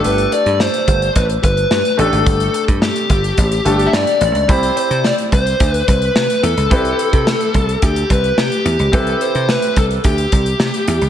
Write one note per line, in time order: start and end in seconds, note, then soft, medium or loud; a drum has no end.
0.00 1.94 A3 medium
0.00 1.95 D4 medium
0.00 1.95 G4 medium
0.00 1.96 A4 medium
0.04 0.25 G1 loud
0.04 0.33 B4 loud
0.04 closed hi-hat medium
0.18 closed hi-hat soft
0.32 0.58 D5 medium
0.32 closed hi-hat medium
0.46 0.67 G2 medium
0.46 closed hi-hat soft
0.60 1.12 C5 medium
0.60 snare medium
0.74 closed hi-hat soft
0.88 1.08 G1 medium
0.88 kick medium
0.88 closed hi-hat medium
1.02 closed hi-hat soft
1.16 1.36 A1 medium
1.16 1.23 B4 medium
1.16 kick medium
1.16 closed hi-hat medium
1.30 closed hi-hat medium
1.43 1.64 G1 medium
1.43 1.95 B4 medium
1.43 kick medium
1.43 closed hi-hat medium
1.57 closed hi-hat soft
1.71 1.81 G2 medium
1.71 snare loud
1.85 closed hi-hat soft
1.97 2.09 A1 medium
1.97 3.61 A3 medium
1.97 3.62 D4 medium
1.97 3.62 G4 medium
1.97 2.54 A4 medium
1.97 3.63 A4 medium
1.97 closed hi-hat medium
2.12 2.23 G#1 medium
2.12 closed hi-hat soft
2.26 2.47 G1 medium
2.26 kick loud
2.26 closed hi-hat medium
2.40 closed hi-hat soft
2.54 2.62 A4 medium
2.54 closed hi-hat medium
2.68 2.89 G2 medium
2.68 kick medium
2.68 closed hi-hat soft
2.82 3.90 G4 medium
2.82 snare medium
2.96 closed hi-hat soft
3.10 3.31 G1 medium
3.10 kick medium
3.10 closed hi-hat medium
3.24 closed hi-hat soft
3.38 3.59 A1 medium
3.38 kick medium
3.38 closed hi-hat medium
3.52 closed hi-hat medium
3.65 3.86 G1 medium
3.65 4.49 A3 medium
3.65 4.49 D4 medium
3.65 4.48 G4 medium
3.65 4.49 A4 medium
3.65 closed hi-hat medium
3.79 closed hi-hat soft
3.87 3.93 E5 medium
3.93 4.04 G2 medium
3.93 4.51 D5 medium
3.93 snare loud
4.07 closed hi-hat soft
4.21 4.31 A1 medium
4.21 closed hi-hat medium
4.35 4.45 C#2 medium
4.35 closed hi-hat soft
4.48 4.70 C2 medium
4.48 6.67 C4 medium
4.48 6.67 E4 medium
4.48 6.67 G4 medium
4.48 4.76 C5 medium
4.48 6.68 B5 medium
4.48 kick loud
4.48 closed hi-hat medium
4.63 closed hi-hat soft
4.77 5.03 C5 medium
4.77 closed hi-hat medium
4.90 5.11 C3 medium
4.90 closed hi-hat soft
5.04 5.12 D5 medium
5.04 snare medium
5.18 closed hi-hat soft
5.32 5.53 C2 medium
5.32 5.70 C5 medium
5.32 kick medium
5.32 closed hi-hat medium
5.47 closed hi-hat soft
5.60 5.81 D2 medium
5.60 kick medium
5.60 closed hi-hat medium
5.70 5.84 B4 medium
5.74 closed hi-hat soft
5.88 6.09 C2 medium
5.88 6.43 B4 medium
5.88 kick medium
5.88 closed hi-hat medium
6.02 closed hi-hat soft
6.15 6.26 C3 medium
6.15 snare loud
6.30 closed hi-hat medium
6.43 6.54 E2 medium
6.43 7.78 A4 medium
6.43 closed hi-hat medium
6.57 6.68 C#2 medium
6.57 closed hi-hat soft
6.70 6.92 C2 loud
6.70 8.89 C4 medium
6.70 8.89 E4 medium
6.70 8.90 G4 medium
6.70 8.90 B4 medium
6.70 kick loud
6.70 closed hi-hat medium
6.85 closed hi-hat soft
6.99 closed hi-hat medium
7.13 7.34 C3 medium
7.13 kick medium
7.13 closed hi-hat soft
7.27 snare loud
7.41 closed hi-hat soft
7.54 7.75 C2 medium
7.54 kick medium
7.54 closed hi-hat medium
7.69 closed hi-hat soft
7.82 8.03 D2 medium
7.82 8.11 G4 medium
7.82 kick medium
7.82 closed hi-hat medium
7.96 closed hi-hat medium
8.10 8.31 C2 medium
8.10 8.36 B4 medium
8.10 kick medium
8.10 closed hi-hat medium
8.24 closed hi-hat soft
8.37 8.48 C3 medium
8.37 8.94 G4 medium
8.37 snare loud
8.52 closed hi-hat soft
8.65 8.76 E2 medium
8.65 closed hi-hat medium
8.79 8.90 C#2 medium
8.79 closed hi-hat soft
8.92 9.14 C2 medium
8.92 11.09 C4 medium
8.92 11.09 E4 medium
8.92 11.09 G4 medium
8.92 9.20 A4 medium
8.92 11.09 B4 medium
8.92 kick loud
8.92 closed hi-hat medium
9.07 closed hi-hat soft
9.21 9.49 C5 medium
9.21 closed hi-hat medium
9.35 9.56 C3 medium
9.35 closed hi-hat soft
9.49 9.78 B4 medium
9.49 snare medium
9.62 closed hi-hat soft
9.76 9.97 C2 medium
9.76 9.84 A4 medium
9.76 kick medium
9.76 closed hi-hat medium
9.91 closed hi-hat soft
10.04 10.25 D2 medium
10.04 11.09 G4 medium
10.04 kick medium
10.04 closed hi-hat medium
10.18 closed hi-hat medium
10.32 10.53 C2 medium
10.32 kick medium
10.32 closed hi-hat medium
10.46 closed hi-hat soft
10.60 10.70 C3 medium
10.60 snare loud
10.74 closed hi-hat medium
10.88 10.98 E2 medium
10.88 closed hi-hat medium
11.01 11.09 C#2 medium
11.01 closed hi-hat soft